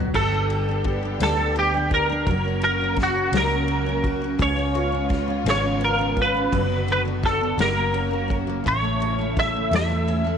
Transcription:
0.00 0.14 B2 medium
0.00 0.13 D3 medium
0.00 0.13 F#3 medium
0.00 0.21 F#3 medium
0.00 0.12 B3 medium
0.00 0.32 B3 medium
0.00 0.11 F#4 medium
0.00 0.12 F#4 medium
0.14 1.16 G1 loud
0.14 2.26 D3 medium
0.14 1.19 G3 medium
0.14 2.26 G3 medium
0.14 2.26 B3 medium
0.14 2.26 G4 medium
0.14 1.22 A4 medium
0.14 kick loud
0.14 crash medium
0.32 0.67 D4 medium
0.50 0.84 G4 soft
0.50 ride soft
0.69 1.01 D4 medium
0.84 1.55 G4 medium
0.84 kick medium
0.84 ride soft
1.03 1.37 D4 medium
1.20 2.28 D2 medium
1.20 2.27 G3 medium
1.20 1.55 A4 medium
1.20 snare loud
1.20 ride medium
1.38 1.73 D4 medium
1.56 1.90 G4 medium
1.56 ride soft
1.74 2.08 D4 medium
1.91 2.34 G4 medium
1.91 2.63 A#4 medium
1.91 kick medium
1.91 ride soft
2.09 2.34 D4 medium
2.27 3.29 F#1 loud
2.27 4.38 C#3 medium
2.27 3.31 F#3 medium
2.27 4.38 F#3 medium
2.27 4.38 A#3 medium
2.27 4.38 F#4 medium
2.27 kick loud
2.27 ride medium
2.45 2.81 C#4 medium
2.62 2.97 F#4 medium
2.62 2.96 A#4 medium
2.62 ride soft
2.81 3.15 C#4 medium
2.96 3.67 F#4 medium
2.96 kick medium
2.96 snare soft
2.96 ride soft
3.03 3.37 F#4 medium
3.15 3.50 C#4 medium
3.32 4.35 C#2 loud
3.32 4.46 F#3 medium
3.32 snare loud
3.32 ride medium
3.37 4.38 A#4 medium
3.51 3.86 C#4 medium
3.68 4.03 F#4 medium
3.68 ride soft
3.86 4.21 C#4 medium
4.04 4.47 F#4 medium
4.04 kick medium
4.04 ride soft
4.22 4.56 C#4 medium
4.39 5.42 C#2 loud
4.39 5.45 C#3 medium
4.39 6.50 C#3 medium
4.39 6.50 G#3 medium
4.39 7.56 B3 medium
4.39 6.50 F4 loud
4.39 5.43 C#5 medium
4.39 kick loud
4.39 ride medium
4.56 4.91 C#4 medium
4.75 5.08 F4 medium
4.75 ride soft
4.92 5.26 C#4 medium
5.09 5.80 F4 medium
5.09 kick medium
5.09 snare soft
5.09 ride soft
5.28 5.62 C#4 medium
5.44 6.48 G#1 loud
5.44 6.59 C#3 medium
5.44 snare loud
5.44 ride medium
5.50 5.84 C#5 medium
5.63 5.97 C#4 medium
5.81 6.15 F4 medium
5.81 6.19 A#4 medium
5.81 ride soft
5.99 6.33 C#4 medium
6.16 6.59 F4 medium
6.16 kick medium
6.16 ride soft
6.22 6.91 B4 medium
6.34 6.59 C#4 medium
6.52 7.55 F#1 loud
6.52 7.58 D3 medium
6.52 7.57 F#3 medium
6.52 7.58 F#3 medium
6.52 7.58 F#4 medium
6.52 kick medium
6.52 ride medium
6.69 7.04 B3 medium
6.88 7.22 D4 medium
6.88 ride soft
6.92 7.01 B4 medium
7.05 7.40 B3 medium
7.23 7.66 D4 medium
7.23 7.58 A4 medium
7.23 kick medium
7.23 snare soft
7.23 ride soft
7.41 7.66 B3 medium
7.57 8.61 F#1 loud
7.57 10.38 C#3 medium
7.57 8.72 F#3 medium
7.57 8.65 F#3 medium
7.57 8.65 A#3 medium
7.57 8.65 F#4 medium
7.57 8.36 A#4 medium
7.57 snare loud
7.57 ride medium
7.75 8.10 A#3 medium
7.93 8.28 C#4 medium
7.93 ride soft
8.11 8.46 A#3 medium
8.28 9.00 C#4 medium
8.28 kick medium
8.28 ride soft
8.47 8.72 A#3 medium
8.64 9.68 A1 medium
8.64 9.70 A2 medium
8.64 10.38 A3 medium
8.64 kick loud
8.64 ride medium
8.68 10.38 E3 medium
8.68 10.38 E4 medium
8.68 9.39 C#5 loud
8.82 9.18 A3 medium
9.00 9.35 C#4 medium
9.00 ride soft
9.19 9.53 A3 medium
9.36 10.06 C#4 medium
9.36 9.74 E5 loud
9.36 kick medium
9.36 snare soft
9.36 ride soft
9.54 9.88 A3 medium
9.71 10.38 E2 loud
9.71 10.38 A2 medium
9.71 snare loud
9.71 ride medium
9.75 10.38 E5 medium
9.89 10.23 A3 medium
10.07 10.38 C#4 medium
10.07 ride soft
10.24 10.38 A3 medium

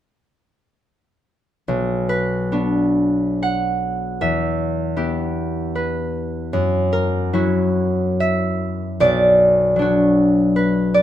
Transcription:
1.68 4.25 B1 soft
2.09 5.74 B4 medium
2.52 4.96 B3 soft
2.52 4.25 D4 soft
2.52 4.25 F#4 soft
3.43 4.25 F#5 medium
4.21 6.55 E2 soft
4.21 8.11 E5 medium
4.96 6.55 B3 soft
4.96 7.32 E4 soft
4.96 6.55 G4 soft
5.75 6.55 B4 soft
6.53 9.03 F#2 soft
6.93 9.03 A#4 medium
7.33 9.76 F#3 soft
7.33 9.03 E4 soft
7.33 9.78 F#4 soft
8.20 9.03 E5 medium
9.00 11.02 B1 soft
9.00 10.93 D5 medium
9.76 11.02 F#3 soft
9.76 11.02 D4 soft
9.82 11.02 F#4 soft
10.56 11.02 B4 medium
10.94 11.02 D5 medium

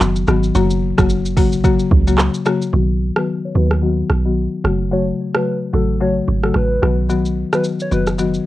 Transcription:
0.00 0.25 F#1 loud
0.00 clap medium
0.00 shaker medium
0.16 shaker medium
0.27 0.52 G#1 medium
0.27 0.49 D#3 medium
0.27 0.49 F#3 medium
0.27 0.49 B3 medium
0.27 0.50 F#4 medium
0.27 cross-stick loud
0.27 shaker soft
0.43 shaker soft
0.55 0.93 F#1 loud
0.55 0.94 C#3 loud
0.55 0.95 F#3 medium
0.55 0.95 A#3 medium
0.55 0.95 F#4 loud
0.55 shaker medium
0.70 shaker medium
0.98 1.54 F#1 medium
0.98 1.17 C#3 medium
0.98 1.18 F#3 medium
0.98 1.18 A#3 medium
0.98 1.18 F#4 medium
0.98 kick medium
0.98 cross-stick loud
0.98 shaker medium
1.10 shaker medium
1.25 shaker medium
1.37 1.58 C#3 medium
1.37 1.59 F#3 medium
1.37 1.59 A#3 medium
1.37 1.59 F#4 medium
1.37 kick loud
1.37 open hi-hat medium
1.37 shaker medium
1.52 1.77 A#1 medium
1.52 shaker medium
1.64 1.86 C#3 medium
1.64 1.86 F#3 medium
1.64 1.86 A#3 medium
1.64 1.86 F#4 loud
1.64 kick medium
1.64 shaker medium
1.79 shaker soft
1.91 2.29 C#2 loud
1.91 kick medium
2.07 2.27 C#3 medium
2.07 2.27 F#3 medium
2.07 2.27 A#3 medium
2.07 2.27 F#4 medium
2.07 shaker medium
2.18 cross-stick medium
2.18 clap medium
2.18 shaker medium
2.34 shaker medium
2.46 2.67 C#3 medium
2.46 2.68 F#3 medium
2.46 2.68 A#3 medium
2.46 2.68 F#4 medium
2.46 cross-stick loud
2.46 shaker soft
2.62 shaker soft
2.73 3.11 B1 loud
2.73 3.13 D#3 medium
2.73 3.13 F#3 medium
2.73 3.13 B3 medium
2.73 3.13 F#4 loud
3.16 3.36 D#3 medium
3.16 3.36 F#3 medium
3.16 3.36 B3 medium
3.16 3.36 F#4 medium
3.16 3.27 B4 medium
3.16 cross-stick loud
3.45 3.54 C#5 medium
3.55 4.03 D#2 medium
3.55 3.77 D#3 medium
3.55 3.77 F#3 medium
3.55 3.77 B3 medium
3.55 3.77 F#4 medium
3.55 3.70 B4 medium
3.71 cross-stick medium
3.82 4.04 D#3 medium
3.82 4.04 F#3 medium
3.82 4.04 B3 medium
3.82 4.04 F#4 loud
4.10 4.48 B1 medium
4.10 cross-stick medium
4.25 4.45 D#3 medium
4.25 4.45 F#3 medium
4.25 4.45 B3 medium
4.25 4.45 F#4 medium
4.64 5.12 F#1 loud
4.64 4.86 C#3 medium
4.64 4.86 F#3 medium
4.64 4.86 A3 medium
4.64 4.86 F#4 medium
4.64 cross-stick medium
4.91 5.31 C#3 medium
4.91 5.31 F#3 medium
4.91 5.31 A3 medium
4.91 5.31 F#4 medium
4.91 5.06 C#5 loud
5.34 5.54 C#3 medium
5.34 5.54 F#3 medium
5.34 5.54 A3 medium
5.34 5.54 F#4 medium
5.34 5.59 B4 medium
5.34 cross-stick loud
5.73 6.21 A1 medium
5.73 5.95 C#3 medium
5.73 5.95 F#3 medium
5.73 5.95 A3 medium
5.73 5.95 F#4 medium
5.73 5.97 A4 medium
6.01 6.22 C#3 medium
6.01 6.22 F#3 medium
6.01 6.22 A3 medium
6.01 6.22 F#4 medium
6.01 6.15 C#5 medium
6.28 6.52 G#1 loud
6.44 6.63 C#3 medium
6.44 6.63 F#3 medium
6.44 6.63 A3 medium
6.44 6.63 F#4 medium
6.44 6.54 A4 medium
6.44 cross-stick medium
6.54 6.79 A1 medium
6.54 6.97 B4 medium
6.54 cross-stick medium
6.82 7.44 B1 loud
6.82 7.04 D#3 medium
6.82 7.04 F#3 medium
6.82 7.04 B3 medium
6.82 7.04 F#4 medium
6.82 cross-stick medium
7.09 7.49 D#3 medium
7.09 7.49 F#3 medium
7.09 7.49 B3 medium
7.09 7.49 F#4 loud
7.09 shaker medium
7.25 shaker medium
7.53 7.72 D#3 medium
7.53 7.72 F#3 medium
7.53 7.72 B3 medium
7.53 7.72 F#4 medium
7.53 7.64 B4 medium
7.53 cross-stick loud
7.53 shaker medium
7.64 shaker medium
7.80 7.91 C#5 medium
7.80 shaker medium
7.91 8.40 F#1 medium
7.91 8.13 D#3 medium
7.91 8.13 F#3 medium
7.91 8.13 B3 medium
7.91 8.13 F#4 medium
7.91 8.06 B4 medium
7.91 shaker medium
8.07 cross-stick medium
8.07 shaker medium
8.19 8.40 D#3 medium
8.19 8.40 F#3 medium
8.19 8.41 B3 medium
8.19 8.41 F#4 medium
8.19 shaker medium
8.34 shaker soft

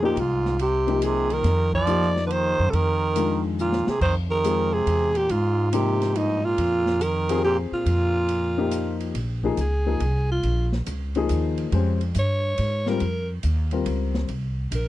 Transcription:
0.00 0.13 F2 medium
0.00 0.20 A#2 medium
0.00 0.15 F3 medium
0.00 0.16 A#3 medium
0.00 0.16 D#4 medium
0.00 0.16 G4 medium
0.05 0.21 G4 medium
0.16 1.41 C2 medium
0.16 0.60 G#2 medium
0.16 0.61 F4 medium
0.16 ride medium
0.45 snare soft
0.59 1.03 C3 medium
0.59 1.06 G4 medium
0.59 ride medium
0.87 1.42 F3 medium
0.87 1.42 A#3 medium
0.87 1.42 D#4 medium
0.87 1.43 G4 medium
0.87 ride soft
1.02 1.33 C3 medium
1.02 1.35 G#4 medium
1.02 hi-hat pedal medium
1.02 ride medium
1.30 1.74 D#3 medium
1.30 1.74 A#4 loud
1.30 ride soft
1.44 2.55 F2 medium
1.44 snare soft
1.44 ride medium
1.73 2.12 F3 loud
1.73 2.23 D5 loud
1.73 kick medium
1.87 2.53 F3 medium
1.87 2.53 A#3 medium
1.87 2.54 D#4 medium
1.87 2.54 G4 medium
1.87 hi-hat pedal medium
1.87 ride medium
2.02 snare soft
2.17 snare soft
2.26 2.34 D3 medium
2.26 2.33 B4 medium
2.30 2.70 D#3 medium
2.30 2.72 C5 loud
2.30 ride medium
2.59 2.72 F#2 medium
2.69 2.75 C3 medium
2.69 2.76 A4 medium
2.73 3.83 F2 medium
2.73 3.45 D#3 medium
2.73 3.46 A#4 medium
2.73 ride medium
3.15 3.81 D#3 medium
3.15 3.82 G#3 medium
3.15 3.82 D4 medium
3.15 3.82 F4 medium
3.15 hi-hat pedal medium
3.15 ride medium
3.59 3.89 A#2 medium
3.59 3.91 F4 medium
3.59 hi-hat pedal soft
3.72 snare medium
3.87 4.00 C3 medium
3.87 4.02 G#4 medium
3.87 muted upright bass stroke soft
3.87 snare medium
4.01 4.83 F2 medium
4.01 4.14 D#3 medium
4.01 4.15 C5 medium
4.01 kick medium
4.01 crash medium
4.29 4.75 D#3 medium
4.29 4.75 A#4 medium
4.44 5.10 G#3 medium
4.44 5.10 C4 soft
4.44 5.10 F4 medium
4.44 5.11 G#4 medium
4.44 hi-hat pedal medium
4.44 ride medium
4.73 5.17 C3 medium
4.73 5.19 G#4 loud
4.87 5.27 E2 medium
4.87 ride medium
5.15 5.32 A#2 medium
5.15 5.32 G4 medium
5.15 ride medium
5.29 6.54 G#2 medium
5.29 5.72 G#2 medium
5.29 5.73 F4 medium
5.29 ride medium
5.72 6.17 C3 medium
5.72 6.38 F3 medium
5.72 6.39 A#3 medium
5.72 6.39 D#4 medium
5.72 6.39 G4 medium
5.72 6.19 G4 medium
5.72 hi-hat pedal medium
5.72 ride medium
6.02 snare medium
6.02 ride soft
6.15 6.45 G2 medium
6.15 6.47 D#4 medium
6.15 ride medium
6.44 7.03 A#2 medium
6.44 7.04 F4 loud
6.58 7.68 F2 medium
6.58 ride medium
6.86 snare soft
7.01 7.44 D#3 medium
7.01 7.44 A#4 medium
7.01 hi-hat pedal medium
7.01 ride medium
7.29 7.84 C4 medium
7.29 7.84 F4 medium
7.29 7.84 G4 medium
7.29 7.84 G#4 medium
7.29 ride medium
7.44 7.58 A#2 medium
7.44 7.57 G4 medium
7.72 8.98 A#2 medium
7.72 8.98 F4 medium
7.72 muted upright bass stroke soft
7.86 9.11 F2 medium
7.86 ride medium
8.29 ride medium
8.57 9.12 F3 medium
8.57 9.12 A#3 medium
8.57 9.12 D#4 medium
8.57 9.13 G4 medium
8.71 hi-hat pedal medium
8.71 ride medium
9.00 ride soft
9.14 9.56 A#1 medium
9.14 ride medium
9.43 9.56 F3 medium
9.43 9.57 A#3 medium
9.43 9.57 D#4 medium
9.43 9.57 G#4 medium
9.43 kick soft
9.57 9.99 C#2 medium
9.57 10.27 G#4 medium
9.57 hi-hat pedal medium
9.57 ride medium
9.86 9.99 F3 medium
9.86 9.99 A#3 medium
9.86 10.00 D#4 soft
9.86 10.00 G#4 medium
10.00 10.42 C2 medium
10.00 ride medium
10.31 10.70 F4 medium
10.43 10.85 A#1 medium
10.43 ride medium
10.72 snare soft
10.86 11.28 C#2 medium
10.86 hi-hat pedal medium
10.86 ride medium
11.15 11.70 F3 medium
11.15 11.70 A#3 medium
11.15 11.70 D#4 medium
11.15 11.70 G#4 medium
11.15 ride soft
11.29 11.71 D#2 medium
11.29 hi-hat pedal medium
11.29 ride medium
11.58 ride soft
11.72 12.14 F2 medium
11.72 11.98 G#3 medium
11.72 11.98 C#4 medium
11.72 11.98 G4 medium
11.72 11.99 C5 medium
11.72 ride medium
12.01 ride soft
12.15 12.57 G2 medium
12.15 hi-hat pedal medium
12.15 ride medium
12.19 12.91 C#5 medium
12.58 13.00 G#2 medium
12.58 ride medium
12.86 12.99 G3 medium
12.86 12.99 C4 medium
12.86 13.00 F4 medium
12.86 13.00 A#4 medium
12.86 13.31 A#4 medium
12.86 snare medium
13.00 13.42 F2 medium
13.00 ride medium
13.43 13.85 D#2 medium
13.43 hi-hat pedal medium
13.43 ride medium
13.71 14.26 G3 medium
13.71 14.26 C4 medium
13.71 14.27 F4 medium
13.71 14.27 A#4 medium
13.71 ride soft
13.86 14.28 C#2 medium
13.86 ride medium
14.14 snare medium
14.28 14.71 C2 medium
14.28 ride medium
14.71 14.88 A#1 medium
14.71 hi-hat pedal medium
14.71 ride medium
14.76 14.88 A#4 medium

